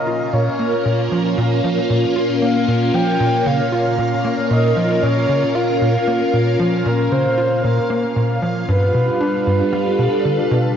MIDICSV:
0, 0, Header, 1, 5, 480
1, 0, Start_track
1, 0, Tempo, 521739
1, 306, Time_signature, 4, 2, 24, 8
1, 9907, End_track
2, 0, Start_track
2, 0, Title_t, "Synth texture"
2, 0, Program_c, 0, 99
2, 0, Note_on_c, 0, 77, 81
2, 9907, Note_off_c, 0, 77, 0
2, 9907, End_track
3, 0, Start_track
3, 0, Title_t, "Soft synth lead"
3, 0, Program_c, 1, 80
3, 0, Note_on_c, 1, 75, 99
3, 306, Note_on_c, 1, 73, 89
3, 320, Note_off_c, 1, 75, 0
3, 1027, Note_off_c, 1, 73, 0
3, 2227, Note_on_c, 1, 77, 99
3, 2710, Note_on_c, 1, 79, 104
3, 2724, Note_off_c, 1, 77, 0
3, 3190, Note_on_c, 1, 77, 95
3, 3204, Note_off_c, 1, 79, 0
3, 3908, Note_off_c, 1, 77, 0
3, 4149, Note_on_c, 1, 75, 92
3, 4626, Note_on_c, 1, 73, 92
3, 4640, Note_off_c, 1, 75, 0
3, 5104, Note_on_c, 1, 77, 108
3, 5118, Note_off_c, 1, 73, 0
3, 5825, Note_off_c, 1, 77, 0
3, 6310, Note_on_c, 1, 70, 100
3, 6551, Note_on_c, 1, 72, 111
3, 6565, Note_off_c, 1, 70, 0
3, 7020, Note_off_c, 1, 72, 0
3, 7026, Note_on_c, 1, 70, 94
3, 7709, Note_off_c, 1, 70, 0
3, 7988, Note_on_c, 1, 71, 126
3, 9390, Note_off_c, 1, 71, 0
3, 9907, End_track
4, 0, Start_track
4, 0, Title_t, "String machine"
4, 0, Program_c, 2, 50
4, 0, Note_on_c, 2, 46, 81
4, 0, Note_on_c, 2, 58, 83
4, 0, Note_on_c, 2, 61, 84
4, 0, Note_on_c, 2, 65, 88
4, 0, Note_on_c, 2, 70, 87
4, 2956, Note_off_c, 2, 70, 0
4, 2967, Note_on_c, 2, 70, 90
4, 7985, Note_on_c, 2, 55, 82
4, 7986, Note_off_c, 2, 58, 0
4, 7986, Note_off_c, 2, 70, 0
4, 7987, Note_off_c, 2, 46, 0
4, 7987, Note_off_c, 2, 61, 0
4, 8130, Note_on_c, 2, 62, 77
4, 8546, Note_on_c, 2, 71, 84
4, 8754, Note_on_c, 2, 69, 94
4, 9905, Note_off_c, 2, 62, 0
4, 9905, Note_off_c, 2, 71, 0
4, 9906, Note_off_c, 2, 55, 0
4, 9907, Note_off_c, 2, 65, 0
4, 9907, Note_off_c, 2, 69, 0
4, 9907, End_track
5, 0, Start_track
5, 0, Title_t, "Analog synth bass"
5, 0, Program_c, 3, 38
5, 64, Note_on_c, 3, 65, 73
5, 277, Note_off_c, 3, 65, 0
5, 304, Note_on_c, 3, 46, 79
5, 446, Note_off_c, 3, 46, 0
5, 545, Note_on_c, 3, 58, 76
5, 687, Note_off_c, 3, 58, 0
5, 786, Note_on_c, 3, 46, 78
5, 998, Note_off_c, 3, 46, 0
5, 1027, Note_on_c, 3, 53, 75
5, 1239, Note_off_c, 3, 53, 0
5, 1265, Note_on_c, 3, 46, 101
5, 1478, Note_off_c, 3, 46, 0
5, 1508, Note_on_c, 3, 53, 78
5, 1649, Note_off_c, 3, 53, 0
5, 1746, Note_on_c, 3, 46, 76
5, 1888, Note_off_c, 3, 46, 0
5, 1986, Note_on_c, 3, 65, 73
5, 2128, Note_off_c, 3, 65, 0
5, 2226, Note_on_c, 3, 58, 82
5, 2368, Note_off_c, 3, 58, 0
5, 2465, Note_on_c, 3, 46, 73
5, 2678, Note_off_c, 3, 46, 0
5, 2704, Note_on_c, 3, 53, 81
5, 2917, Note_off_c, 3, 53, 0
5, 2945, Note_on_c, 3, 46, 99
5, 3158, Note_off_c, 3, 46, 0
5, 3183, Note_on_c, 3, 49, 82
5, 3326, Note_off_c, 3, 49, 0
5, 3425, Note_on_c, 3, 65, 76
5, 3638, Note_off_c, 3, 65, 0
5, 3664, Note_on_c, 3, 46, 76
5, 3807, Note_off_c, 3, 46, 0
5, 3906, Note_on_c, 3, 58, 75
5, 4047, Note_off_c, 3, 58, 0
5, 4144, Note_on_c, 3, 46, 84
5, 4357, Note_off_c, 3, 46, 0
5, 4384, Note_on_c, 3, 53, 75
5, 4597, Note_off_c, 3, 53, 0
5, 4625, Note_on_c, 3, 46, 100
5, 4838, Note_off_c, 3, 46, 0
5, 4866, Note_on_c, 3, 49, 73
5, 5007, Note_off_c, 3, 49, 0
5, 5107, Note_on_c, 3, 65, 78
5, 5319, Note_off_c, 3, 65, 0
5, 5349, Note_on_c, 3, 46, 79
5, 5489, Note_off_c, 3, 46, 0
5, 5588, Note_on_c, 3, 58, 75
5, 5729, Note_off_c, 3, 58, 0
5, 5827, Note_on_c, 3, 46, 76
5, 6039, Note_off_c, 3, 46, 0
5, 6067, Note_on_c, 3, 53, 82
5, 6279, Note_off_c, 3, 53, 0
5, 6308, Note_on_c, 3, 46, 100
5, 6519, Note_off_c, 3, 46, 0
5, 6548, Note_on_c, 3, 49, 75
5, 6689, Note_off_c, 3, 49, 0
5, 6786, Note_on_c, 3, 65, 74
5, 6998, Note_off_c, 3, 65, 0
5, 7028, Note_on_c, 3, 46, 77
5, 7169, Note_off_c, 3, 46, 0
5, 7268, Note_on_c, 3, 58, 77
5, 7409, Note_off_c, 3, 58, 0
5, 7507, Note_on_c, 3, 46, 75
5, 7719, Note_off_c, 3, 46, 0
5, 7748, Note_on_c, 3, 53, 76
5, 7959, Note_off_c, 3, 53, 0
5, 7988, Note_on_c, 3, 43, 104
5, 8200, Note_off_c, 3, 43, 0
5, 8228, Note_on_c, 3, 47, 71
5, 8368, Note_off_c, 3, 47, 0
5, 8469, Note_on_c, 3, 62, 78
5, 8680, Note_off_c, 3, 62, 0
5, 8709, Note_on_c, 3, 43, 78
5, 8849, Note_off_c, 3, 43, 0
5, 8948, Note_on_c, 3, 55, 85
5, 9088, Note_off_c, 3, 55, 0
5, 9187, Note_on_c, 3, 47, 78
5, 9272, Note_off_c, 3, 47, 0
5, 9430, Note_on_c, 3, 50, 75
5, 9570, Note_off_c, 3, 50, 0
5, 9670, Note_on_c, 3, 47, 104
5, 9880, Note_off_c, 3, 47, 0
5, 9907, End_track
0, 0, End_of_file